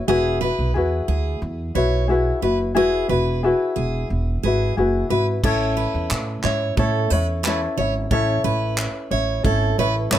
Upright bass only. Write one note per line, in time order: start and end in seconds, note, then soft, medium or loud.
0.08 0.49 E1 medium
0.59 0.72 B1 medium
0.75 1.02 E2 medium
1.08 1.35 D2 medium
1.42 1.69 E2 medium
1.75 2.30 B1 medium
2.43 2.76 F#1 medium
2.76 3.03 E1 medium
3.09 3.50 E1 medium
3.77 4.04 E1 medium
4.10 4.37 E1 medium
4.44 4.71 G#1 medium
4.78 5.04 F#1 medium
5.10 5.37 G#1 medium
5.44 5.85 A1 medium
5.95 6.08 E2 medium
6.11 6.38 A2 medium
6.44 6.71 G#2 medium
6.77 7.04 A2 medium
7.11 7.66 E2 medium
7.77 8.05 G#1 medium
8.11 8.38 A1 medium
8.44 8.85 A1 medium
9.11 9.39 A1 medium
9.45 9.72 G#1 medium
9.78 10.06 A1 medium
10.11 10.19 G#1 medium